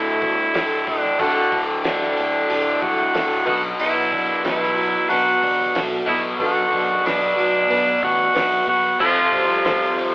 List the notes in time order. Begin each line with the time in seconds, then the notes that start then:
Already playing: D1 D2 A2 D3 A3 D4 E4 F#4 A4
0.21 G1 D3, kick, open hi-hat
0.54 D1 A3 D4 F#4 A4, snare, open hi-hat
0.87 D1 A2 D4, kick, open hi-hat
1.04 snare
1.19 D1 D2 A2 D3 A3 D4 F#4 A4, kick, open hi-hat
1.52 D1 D3, kick, open hi-hat
1.84 D1 A3 D4 F#4 A4, snare, open hi-hat
2.02 snare
2.17 D1 A3, open hi-hat
2.48 D1 A2 A3 D4 F#4 A4, open hi-hat
2.81 C2 D3 F#4, kick, open hi-hat
3.13 D1 A3 D4 F#4 A4, snare, open hi-hat
3.45 B1 B2 F#3 B3 D4 F#4 B4, kick, open hi-hat
3.50 B3
3.79 B1 B2 E4, open hi-hat
4.12 D4, kick, open hi-hat
4.44 B1 B3 D4 E4 F#4 B4, snare, open hi-hat
4.63 snare
4.77 F#4, open hi-hat
5.09 B1 B3 D4 F#4 B4, open hi-hat
5.43 E1 D4, kick, open hi-hat
5.74 B1 B3 D4 F#4 A4, snare, open hi-hat
6.06 B1 B2 F#3 B3 E4, kick, open hi-hat
6.39 B1 B2 B3 D4 F#4 A4, kick, open hi-hat
6.73 B1 D4, kick, open hi-hat
7.04 B1 B3 D4 F#4 B4 D5, snare, open hi-hat
7.36 B1 F#4, open hi-hat
7.69 B1 B3 D4 F#4 B4, open hi-hat
8.01 A1 D4 F#4, kick, open hi-hat
8.34 B1 B3 D4 F#4 B4, snare, open hi-hat
8.67 B1 B3 F#4, kick, open hi-hat
8.99 F1 F2 C3 F3 G3 C4 F4 G4 A4, kick, crash
9.33 G3, kick, open hi-hat
9.64 F1 C4 F4 G4 A4, snare, open hi-hat
9.98 C4, open hi-hat